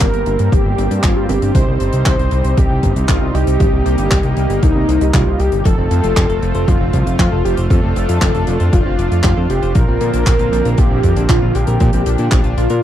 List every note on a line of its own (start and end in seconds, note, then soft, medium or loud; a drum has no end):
0.00 0.11 G1 medium
0.00 1.26 G2 medium
0.00 1.26 G3 medium
0.00 5.61 G3 medium
0.00 1.26 A#3 medium
0.00 1.51 A#3 medium
0.00 3.56 C4 medium
0.00 1.26 D4 medium
0.00 1.26 G4 medium
0.00 0.54 A#4 loud
0.00 kick loud
0.00 clap loud
0.00 closed hi-hat medium
0.14 0.24 G1 medium
0.14 closed hi-hat soft
0.26 0.37 G1 medium
0.26 closed hi-hat medium
0.39 0.50 G2 medium
0.39 closed hi-hat medium
0.52 0.63 G1 medium
0.52 1.05 G4 loud
0.52 kick loud
0.52 closed hi-hat medium
0.65 0.76 G1 medium
0.78 0.88 G1 medium
0.78 closed hi-hat medium
0.91 1.01 G2 medium
0.91 closed hi-hat medium
1.03 1.14 G1 medium
1.03 1.31 F4 medium
1.03 kick loud
1.03 clap loud
1.03 closed hi-hat medium
1.17 1.27 G2 medium
1.29 1.40 G1 loud
1.29 1.52 C3 medium
1.29 1.52 G3 medium
1.29 1.52 A#3 medium
1.29 1.52 D4 medium
1.29 1.52 G4 loud
1.29 1.54 G4 loud
1.29 closed hi-hat medium
1.42 1.52 G1 medium
1.42 closed hi-hat medium
1.55 1.65 C2 loud
1.55 3.31 C3 medium
1.55 3.31 G3 medium
1.55 3.31 C4 medium
1.55 3.31 D#4 medium
1.55 5.61 D#4 medium
1.55 3.31 G4 medium
1.55 2.59 C5 loud
1.55 kick loud
1.55 closed hi-hat medium
1.68 1.78 C2 medium
1.80 1.91 G1 medium
1.80 closed hi-hat medium
1.93 2.04 C2 medium
1.93 closed hi-hat medium
2.06 2.17 C2 loud
2.06 kick loud
2.06 clap loud
2.06 closed hi-hat medium
2.19 2.29 C2 medium
2.19 closed hi-hat soft
2.31 2.42 C2 medium
2.31 closed hi-hat medium
2.44 2.55 C2 medium
2.44 closed hi-hat medium
2.57 2.68 C2 loud
2.57 3.08 G4 loud
2.57 kick loud
2.57 closed hi-hat medium
2.70 2.81 C2 medium
2.83 2.94 G1 loud
2.83 kick medium
2.83 closed hi-hat medium
2.96 3.06 C2 medium
2.96 closed hi-hat medium
3.08 3.19 C2 loud
3.08 3.36 F4 loud
3.08 kick loud
3.08 clap loud
3.08 closed hi-hat medium
3.21 3.32 C2 medium
3.34 3.45 C2 medium
3.34 3.57 C3 medium
3.34 3.57 G3 medium
3.34 3.57 C4 medium
3.34 3.57 D#4 medium
3.34 3.57 G4 medium
3.34 3.59 G4 loud
3.34 closed hi-hat medium
3.47 3.58 C2 medium
3.47 closed hi-hat medium
3.60 3.70 G1 loud
3.60 4.99 C3 medium
3.60 4.99 G3 medium
3.60 5.63 A#3 medium
3.60 4.99 C4 medium
3.60 4.99 D#4 medium
3.60 4.64 G4 loud
3.60 4.99 G4 medium
3.60 kick loud
3.60 closed hi-hat medium
3.73 3.83 C2 medium
3.86 3.96 C2 medium
3.86 closed hi-hat medium
3.98 4.09 G1 medium
3.98 closed hi-hat medium
4.11 4.22 C2 medium
4.11 kick loud
4.11 clap loud
4.11 closed hi-hat medium
4.23 4.35 C2 medium
4.23 closed hi-hat soft
4.37 4.47 C2 medium
4.37 closed hi-hat medium
4.50 4.60 G1 medium
4.50 closed hi-hat medium
4.63 4.73 C2 loud
4.63 5.15 D#4 loud
4.63 kick loud
4.63 closed hi-hat medium
4.75 4.86 C2 medium
4.88 4.99 C2 loud
4.88 closed hi-hat medium
5.01 5.11 C2 medium
5.01 5.62 C3 medium
5.01 5.62 G3 medium
5.01 5.62 C4 medium
5.01 5.62 D#4 medium
5.01 5.62 G4 medium
5.01 closed hi-hat medium
5.14 5.24 C2 loud
5.14 5.41 F4 medium
5.14 kick loud
5.14 clap loud
5.14 closed hi-hat medium
5.27 5.37 C2 medium
5.39 5.50 C2 medium
5.39 5.65 G4 medium
5.39 closed hi-hat medium
5.52 5.63 G1 medium
5.52 closed hi-hat medium
5.65 5.76 F1 loud
5.65 5.74 F3 loud
5.65 9.72 A3 medium
5.65 7.68 C4 medium
5.65 12.83 F4 medium
5.65 6.69 A4 loud
5.65 kick loud
5.65 closed hi-hat medium
5.78 5.88 F1 medium
5.78 5.87 C4 medium
5.91 6.01 F2 medium
5.91 6.03 F3 medium
5.91 closed hi-hat medium
6.04 6.14 F1 medium
6.04 6.13 F4 medium
6.04 closed hi-hat medium
6.16 6.27 F1 loud
6.16 6.26 F3 medium
6.16 kick loud
6.16 clap loud
6.16 closed hi-hat medium
6.29 6.40 F1 medium
6.29 6.39 A4 medium
6.29 closed hi-hat medium
6.42 6.52 F1 medium
6.42 6.52 F3 medium
6.42 closed hi-hat medium
6.55 6.65 F1 medium
6.55 6.64 C5 medium
6.55 closed hi-hat medium
6.68 6.78 F1 loud
6.68 6.77 F3 loud
6.68 7.18 F4 loud
6.68 kick loud
6.68 closed hi-hat medium
6.81 6.91 F1 medium
6.81 6.90 C4 medium
6.93 7.04 C2 medium
6.93 7.06 F3 medium
6.93 kick medium
6.93 closed hi-hat medium
7.06 7.17 F1 medium
7.06 7.16 F4 medium
7.06 closed hi-hat medium
7.19 7.29 F1 loud
7.19 7.28 F3 medium
7.19 7.43 F4 medium
7.19 kick loud
7.19 clap loud
7.19 closed hi-hat medium
7.32 7.42 F1 medium
7.32 7.41 A4 medium
7.45 7.55 F1 loud
7.45 7.54 F3 medium
7.45 7.56 G4 loud
7.45 closed hi-hat medium
7.57 7.68 F1 medium
7.57 7.67 C5 medium
7.57 closed hi-hat medium
7.70 7.81 F2 loud
7.70 7.80 F3 loud
7.70 9.73 D4 medium
7.70 8.74 A4 loud
7.70 kick loud
7.70 closed hi-hat medium
7.83 7.94 F1 medium
7.83 7.92 C4 medium
7.96 8.06 F1 medium
7.96 8.08 F3 medium
7.96 closed hi-hat medium
8.09 8.19 F2 medium
8.09 8.18 F4 medium
8.09 closed hi-hat medium
8.22 8.32 F1 medium
8.22 8.31 F3 medium
8.22 kick loud
8.22 clap loud
8.22 closed hi-hat medium
8.34 8.45 F1 medium
8.34 8.44 A4 medium
8.34 closed hi-hat soft
8.47 8.58 F1 medium
8.47 8.57 F3 medium
8.47 closed hi-hat medium
8.60 8.71 F2 medium
8.60 8.69 C5 medium
8.60 closed hi-hat medium
8.73 8.83 F1 loud
8.73 8.82 F3 medium
8.73 9.24 F4 medium
8.73 kick loud
8.73 closed hi-hat medium
8.86 8.96 F1 medium
8.86 8.95 C4 medium
8.98 9.09 F1 loud
8.98 9.11 F3 medium
8.98 closed hi-hat medium
9.11 9.22 F2 medium
9.11 9.21 F4 medium
9.11 closed hi-hat medium
9.23 9.35 F1 medium
9.23 9.33 F3 loud
9.23 9.51 F4 medium
9.23 kick loud
9.23 clap loud
9.23 closed hi-hat medium
9.37 9.47 F2 medium
9.37 9.46 A4 medium
9.50 9.60 F1 loud
9.50 9.59 F3 medium
9.50 9.77 G4 medium
9.50 closed hi-hat medium
9.63 9.73 F1 medium
9.63 9.72 C5 medium
9.63 closed hi-hat medium
9.75 9.86 A#1 loud
9.75 12.83 D3 medium
9.75 9.85 F3 loud
9.75 12.83 F3 medium
9.75 12.83 A#3 medium
9.75 11.79 C4 medium
9.75 10.79 A#4 loud
9.75 kick loud
9.75 closed hi-hat medium
9.88 9.99 A#1 medium
9.88 9.98 C4 medium
10.01 10.11 A#2 medium
10.01 10.13 F3 medium
10.01 closed hi-hat medium
10.13 10.24 A#1 medium
10.13 10.23 D4 medium
10.13 closed hi-hat medium
10.26 10.37 A#1 loud
10.26 10.36 F3 medium
10.26 kick loud
10.26 clap loud
10.26 closed hi-hat medium
10.39 10.50 A#1 medium
10.39 10.49 F4 medium
10.39 closed hi-hat medium
10.52 10.63 A#1 medium
10.52 10.62 F3 medium
10.52 closed hi-hat medium
10.65 10.76 A#1 medium
10.65 10.74 A#4 medium
10.65 closed hi-hat medium
10.78 10.88 A#1 loud
10.78 10.87 F3 loud
10.78 11.29 G4 loud
10.78 kick loud
10.78 closed hi-hat medium
10.91 11.01 A#1 medium
10.91 11.00 C4 medium
11.03 11.14 F2 loud
11.03 11.16 F3 medium
11.03 kick medium
11.03 closed hi-hat medium
11.16 11.27 A#1 medium
11.16 11.26 D4 medium
11.16 closed hi-hat medium
11.29 11.40 A#1 loud
11.29 11.38 F3 loud
11.29 11.56 F4 medium
11.29 kick loud
11.29 clap loud
11.29 closed hi-hat medium
11.42 11.53 A#1 medium
11.42 11.51 F4 medium
11.55 11.65 A#1 loud
11.55 11.64 F3 medium
11.55 12.57 G4 loud
11.55 closed hi-hat medium
11.67 11.78 A#1 medium
11.67 11.77 A#4 medium
11.67 closed hi-hat medium
11.80 11.91 A#2 loud
11.80 11.90 F3 loud
11.80 12.83 D4 medium
11.80 kick loud
11.80 closed hi-hat medium
11.93 12.04 A#1 medium
11.93 12.03 C4 medium
11.93 closed hi-hat medium
12.06 12.17 A#1 medium
12.06 12.18 F3 medium
12.06 closed hi-hat medium
12.18 12.29 A#2 medium
12.18 12.28 D4 medium
12.18 closed hi-hat medium
12.32 12.42 A#1 loud
12.32 12.41 F3 medium
12.32 kick loud
12.32 clap loud
12.32 closed hi-hat medium
12.44 12.55 A#1 medium
12.44 12.54 F4 medium
12.44 closed hi-hat soft
12.57 12.68 A#1 medium
12.57 12.67 F3 medium
12.57 12.83 F4 medium
12.57 closed hi-hat medium
12.70 12.81 A#2 medium
12.70 12.79 A#4 medium
12.70 closed hi-hat medium